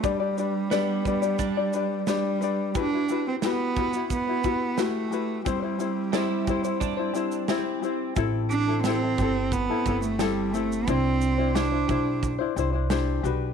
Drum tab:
SH |x-x-x-xxx-x-x-x-|x-x-x-xxx-x-x-x-|x-x-x-xxx-xxx-x-|x-x-x-x-x-xxx-xx|
SD |----o-------o---|----o-------o---|----o-------o---|----o-------o---|
BD |o-----o-o-------|o-----o-o-o-----|o-----o-o-------|o-----o-o-o-----|

SH |x-x-x-x-x-x-x-x-|
SD |----o-------o---|
BD |o-----o-o-------|